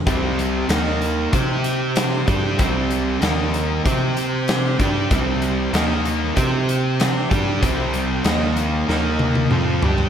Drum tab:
HH |x-x-x-x-x-x-x-x-|x-x-x-x-x-x-x-x-|x-x-x-x-x-x-x-x-|x-x-x-x---------|
SD |----o-------o---|----o-------o---|----o-------o---|----o---o-------|
T1 |----------------|----------------|----------------|----------oo----|
T2 |----------------|----------------|----------------|------------o---|
FT |----------------|----------------|----------------|--------------oo|
BD |o-------o-----o-|o-------o-----o-|o-------o-----o-|o---------------|